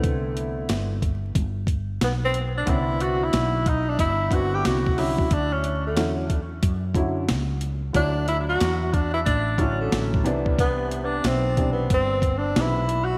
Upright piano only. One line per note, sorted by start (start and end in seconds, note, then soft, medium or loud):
0.00 0.85 D3 medium
0.00 0.86 B3 medium
0.00 0.86 C4 medium
0.00 0.90 E4 medium
2.66 3.61 D3 medium
2.66 3.61 B3 medium
2.66 3.61 C4 medium
2.66 2.76 C#4 medium
2.75 3.65 D4 medium
4.30 4.81 D3 medium
4.30 4.81 B3 medium
4.30 4.82 C4 medium
4.30 4.82 E4 medium
4.97 5.23 D3 medium
4.97 5.24 F#3 medium
4.97 5.24 C#4 medium
4.97 5.24 E4 medium
5.95 6.22 D3 medium
5.95 6.22 F#3 medium
5.95 6.23 C#4 medium
5.95 6.23 E4 medium
6.95 7.21 D3 medium
6.95 7.21 F#3 medium
6.95 7.22 C#4 medium
6.95 7.22 E4 medium
7.93 8.88 D3 medium
7.93 8.89 F#3 medium
7.93 8.90 E4 medium
7.93 8.89 C#5 medium
9.58 10.25 D3 medium
9.58 10.25 F#3 medium
9.58 10.25 C#4 medium
9.58 10.26 E4 medium
10.24 11.40 C3 medium
10.24 11.40 E3 medium
10.24 11.41 B3 medium
10.24 11.41 D4 loud
11.57 11.83 C3 medium
11.57 11.83 E3 medium
11.57 11.83 B3 medium
11.57 11.84 D4 medium
12.55 12.82 C3 medium
12.55 12.82 E3 medium
12.55 12.82 B3 medium
12.55 12.83 E4 medium